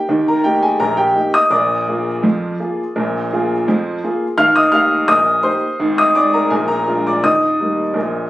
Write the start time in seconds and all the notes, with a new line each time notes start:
Already playing: G4 G5
0.09 D#2 D#3
0.28 A#4 A#5
0.44 A#3 D#4 G4 G5
0.62 G#4 G#5
0.80 A#1 A#2 A#4 A#5
0.97 G4 G5
1.15 A#3 D#4 G4
1.34 D#5 D#6
1.50 A#1 A#2 D5 D6
1.88 A#3 F4 G#4
2.23 F2 F3
2.59 A#3 F4 G#4
2.96 A#1 A#2
3.32 A#3 F4 G#4
3.68 F2 F3
4.03 A#3 F4 G#4
4.38 D#2 D#3 F5 F6
4.56 D#5 D#6
4.72 A#3 D#4 G4 F5 F6
5.08 A#1 A#2 D#5 D#6
5.43 A#3 D#4 G4 C5 C6
5.80 G#1 G#2
5.98 D#5 D#6
6.15 G#3 D#4 G#4 D5 D6
6.34 A#4 A#5
6.50 A#1 A#2 G#4 G#5
6.68 A#4 A#5
6.88 G#3 D4 F4
7.07 D5 D6
7.23 D#2 D#3 D#5 D#6
7.60 G3 A#3 D#4
7.94 A#1 A#2